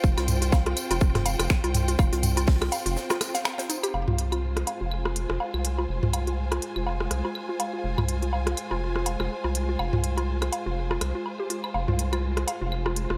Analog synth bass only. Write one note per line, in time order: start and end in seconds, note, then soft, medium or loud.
0.04 0.15 F1 loud
0.17 0.74 C2 loud
0.91 1.36 F1 medium
1.39 1.48 F1 loud
1.64 1.96 C2 medium
1.99 2.10 F1 loud
2.13 2.69 C2 loud
2.86 2.96 F1 medium
3.94 4.06 F1 loud
4.08 4.64 C2 medium
4.81 5.26 F1 medium
5.30 5.39 F1 medium
5.54 5.86 C2 medium
5.89 6.01 F1 loud
6.03 6.59 C2 medium
6.76 7.08 F1 medium
7.11 7.23 C2 medium
7.84 7.96 F1 loud
7.98 8.55 C2 medium
8.71 9.16 F1 medium
9.20 9.29 F1 loud
9.44 9.77 C2 medium
9.79 9.91 F1 loud
9.93 10.50 C2 loud
10.66 10.98 F1 medium
11.01 11.13 C2 medium
11.75 11.86 F1 loud
11.88 12.45 C2 medium
12.61 13.07 F1 medium
13.10 13.18 F1 loud